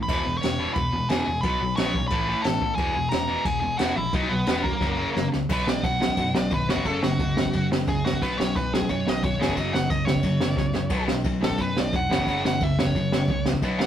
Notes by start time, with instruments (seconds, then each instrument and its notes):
0.03 lead electric guitar B4 B5
0.08 picked electric bass E1, overdriven electric guitar E2 B2 E3, kick, crash
0.25 picked electric bass E1, overdriven electric guitar E2 B2
0.37 lead electric guitar C#5 C#6
0.42 picked electric bass E1, overdriven electric guitar E2 B2, snare, ride
0.58 overdriven electric guitar E2 B2 E3
0.74 picked electric bass E1, overdriven electric guitar E2 B2, lead electric guitar B4 B5, kick, ride
0.93 overdriven electric guitar E2 B2
1.09 picked electric bass E1, overdriven electric guitar E2 B2 E3, lead electric guitar G#4 G#5, snare, ride
1.27 picked electric bass E1, overdriven electric guitar E2 B2
1.41 picked electric bass B1, overdriven electric guitar B2 F#3 B3, lead electric guitar B4 B5, kick, ride
1.61 picked electric bass B1, overdriven electric guitar B2 F#3
1.76 picked electric bass A#1, overdriven electric guitar B2 F#3 B3, lead electric guitar C#5 C#6, snare, ride
1.94 overdriven electric guitar B2 F#3, kick
2.08 picked electric bass A1, overdriven electric guitar A2 E3, lead electric guitar B4 B5, kick, ride
2.12 overdriven electric guitar A3
2.27 overdriven electric guitar A2 E3 A3
2.42 picked electric bass A1, overdriven electric guitar A2 E3, lead electric guitar A4 A5, snare, ride
2.61 picked electric bass A1, overdriven electric guitar A2 E3, kick
2.75 picked electric bass E1, overdriven electric guitar E2 B2, lead electric guitar G#4 G#5, kick, ride
2.79 overdriven electric guitar E3
2.95 picked electric bass E1, overdriven electric guitar E2 B2
3.09 overdriven electric guitar E2 B2, lead electric guitar A#4 A#5, snare, ride
3.13 picked electric bass E1
3.28 overdriven electric guitar E2 B2 E3
3.45 picked electric bass E1, overdriven electric guitar E2 B2, lead electric guitar G#4 G#5, kick, ride
3.60 overdriven electric guitar E2 B2, lead electric guitar G#4 G#5
3.78 picked electric bass E1, overdriven electric guitar E2 B2 E3, lead electric guitar F#4 F#5, snare, ride
3.96 picked electric bass A#1, overdriven electric guitar E2 B2, lead electric guitar E4 E5
4.13 picked electric bass B1, overdriven electric guitar B2 F#3 B3, lead electric guitar D#4 D#5, kick, ride
4.29 picked electric bass B1, overdriven electric guitar B2 F#3, lead electric guitar B3 B4
4.46 picked electric bass E1, overdriven electric guitar B2 F#3 B3, snare, ride
4.63 overdriven electric guitar B2 F#3, lead electric guitar A#3 A#4, kick
4.81 picked electric bass F#1, overdriven electric guitar F#2 C#3 F#3, kick, snare
4.98 overdriven electric guitar F#2 C#3 F#3
5.14 picked electric bass F#1, overdriven electric guitar F#2 C#3, snare
5.32 picked electric bass C#2, overdriven electric guitar F#2 C#3, snare
5.49 picked electric bass B1, overdriven electric guitar B2 F#3 B3, lead electric guitar B4, kick, crash
5.67 picked electric bass B1, overdriven electric guitar B2 F#3, lead electric guitar D5, snare
5.83 picked electric bass B1, overdriven electric guitar B2 F#3, lead electric guitar F#5, kick, crash
6.00 picked electric bass B1, overdriven electric guitar B2 F#3, snare
6.09 kick
6.17 picked electric bass F#2, overdriven electric guitar B2 F#3, kick, crash
6.34 picked electric bass B1, overdriven electric guitar B2 F#3, lead electric guitar D5, snare
6.50 picked electric bass G#1, overdriven electric guitar B2 F#3, lead electric guitar B4, kick, crash
6.69 picked electric bass F#1, overdriven electric guitar F#2 C#3 F#3, lead electric guitar F#4, snare
6.77 kick
6.85 picked electric bass F#1, overdriven electric guitar F#2 C#3 F#3, lead electric guitar A4, kick, crash
7.03 picked electric bass F#1, overdriven electric guitar F#2 C#3, lead electric guitar F#4, snare
7.19 picked electric bass F#1, overdriven electric guitar F#2 C#3, kick, crash
7.37 picked electric bass F#1, overdriven electric guitar F#2 C#3, snare
7.45 kick
7.53 picked electric bass F#2, overdriven electric guitar F#2 C#3, kick, crash
7.72 picked electric bass F#1, overdriven electric guitar F#2 C#3, snare
7.87 picked electric bass F#1, overdriven electric guitar F#2 C#3, lead electric guitar G#4, kick, crash
8.04 overdriven electric guitar F#2 C#3, lead electric guitar F#4, snare
8.13 kick
8.22 picked electric bass B1, overdriven electric guitar B2 F#3 B3, lead electric guitar B4, kick, crash
8.38 picked electric bass B1, overdriven electric guitar B2 F#3, lead electric guitar C#5, snare
8.56 picked electric bass B1, overdriven electric guitar B2 F#3, lead electric guitar B4, kick, crash
8.73 picked electric bass B1, overdriven electric guitar B2 F#3, lead electric guitar G#4, snare
8.81 kick
8.89 picked electric bass F#2, overdriven electric guitar B2 F#3, lead electric guitar C#5, kick, crash
9.07 picked electric bass B1, overdriven electric guitar B2 F#3, lead electric guitar D#5, snare
9.23 picked electric bass G#1, overdriven electric guitar B2 F#3, lead electric guitar C#5, kick, crash
9.40 picked electric bass F#1, overdriven electric guitar F#2 C#3 F#3, lead electric guitar G#4, snare
9.48 kick
9.56 picked electric bass F#1, overdriven electric guitar F#2 C#3 F#3, lead electric guitar D#5, kick, crash
9.73 picked electric bass F#1, overdriven electric guitar F#2 C#3, lead electric guitar F#5, snare
9.90 picked electric bass F#1, overdriven electric guitar F#2 C#3, lead electric guitar D#5, kick, crash
10.05 picked electric bass F#1, overdriven electric guitar F#2 C#3, lead electric guitar C#5, snare
10.15 kick
10.23 picked electric bass F#2, overdriven electric guitar F#2 C#3, kick, crash
10.41 picked electric bass F#1, overdriven electric guitar F#2 C#3, snare
10.56 picked electric bass F#1, overdriven electric guitar F#2 C#3, kick, snare
10.74 overdriven electric guitar F#2 C#3, snare
10.90 picked electric bass B1, overdriven electric guitar B2 F#3 B3, kick, crash
11.08 picked electric bass B1, overdriven electric guitar B2 F#3, snare
11.24 picked electric bass B1, overdriven electric guitar B2 F#3, kick, crash
11.42 picked electric bass B1, overdriven electric guitar B2 F#3, lead electric guitar A4, snare
11.50 kick
11.58 picked electric bass F#2, overdriven electric guitar B2 F#3, lead electric guitar B4, kick, crash
11.77 picked electric bass B1, overdriven electric guitar B2 F#3, lead electric guitar D5, snare
11.93 picked electric bass F1, overdriven electric guitar B2 F#3, lead electric guitar F#5, kick, crash
12.11 picked electric bass F#1, overdriven electric guitar F#2 C#3 F#3, snare
12.18 kick
12.27 picked electric bass F#1, overdriven electric guitar F#2 C#3 F#3, kick, crash
12.45 picked electric bass F#1, overdriven electric guitar F#2 C#3, lead electric guitar F#5, snare
12.60 picked electric bass F#1, overdriven electric guitar F#2 C#3, lead electric guitar E5, kick, crash
12.79 picked electric bass F#1, overdriven electric guitar F#2 C#3, lead electric guitar C#5, snare
12.86 kick
12.95 picked electric bass F#2, overdriven electric guitar F#2 C#3, kick, crash
13.12 picked electric bass F#1, overdriven electric guitar F#2 C#3, snare
13.27 picked electric bass C#2, overdriven electric guitar F#2 C#3, kick, crash
13.46 overdriven electric guitar F#2 C#3, snare
13.53 kick
13.62 picked electric bass B1, overdriven electric guitar B2 F#3 B3, kick, crash
13.79 picked electric bass B1, overdriven electric guitar B2 F#3, lead electric guitar F#5, snare